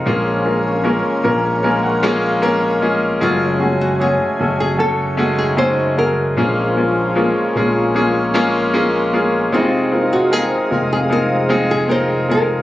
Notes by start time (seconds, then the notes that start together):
Already playing: A#4
0.06 A#1 A#2 C#3 F3 G#3 A#3 C#4 F4 G#4 A#4 G#5 C#6
0.44 G#3 A#3 C#4 F4 A#4
0.84 G#3 A#3 C#4 F4 A#4
1.23 A#1 G#3 A#3 C#4 F4 A#4 A#5
1.63 G#3 A#3 C#4 F4 A#4 G#5
1.83 F#5
2.03 G#3 A#3 C#4 F4 G#4
2.23 F5
2.42 G#3 A#3 C#4 F4 A#4 F5
2.62 C#5
2.81 G#3 A#3 C#4 F4 G#4 D#5
3.20 F#1 C#3 F#3 G#3 A3 C#4 F4 G#4 G#5
3.60 G#3 A3 C#4 F#4 G#4
3.81 F#4
4.00 A3 C#4 F#4 G#4 C#5
4.39 F#1 A3 C#4 F#4 G#4 A4
4.60 G#4
4.78 F#3 A3 C#4 F#4 A4
5.17 D#3 G#3 A3 C#4 D#4 F#4 G#4
5.38 G#4
5.57 G#3 A3 C#4 F#4 G#4 C5
5.97 F#3 G#3 C#4 F#4 G#4 A#4
6.37 A#1 A#2 F3 G#3 A#3 C#4 F4 G#4 A#4 G#5 C#6
6.77 G#3 A#3 C#4 F4 G#4
7.15 G#3 A#3 C#4 F4 G#4
7.55 A#1 G#3 A#3 C#4 F4 G#4
7.95 G#3 A#3 C#4 F4 G#4
8.34 G#3 A#3 C#4 F4 G#4
8.73 F3 G#3 A#3 C#4 F4 G#4
9.13 G#3 A#3 C#4 F4 G#4
9.52 F1 C3 G#3 C4 D#4 F4 G#4 F5 D#6
9.91 G#3 C4 D#4 F4 A#4
10.01 D#4
10.13 F#4
10.30 G#3 C4 D#4 F4 G#4 A#4
10.70 F1 G#3 C4 D#4 F4 A#4
10.93 G#4
11.09 G#3 C4 D#4 F4 G#4 A#4
11.49 G#3 C4 D#4 F4 G#4
11.71 G#4
11.88 G#3 C4 D#4 F4 A#4 C5
12.28 G#3 C4 D#4 F4 G#4 A#4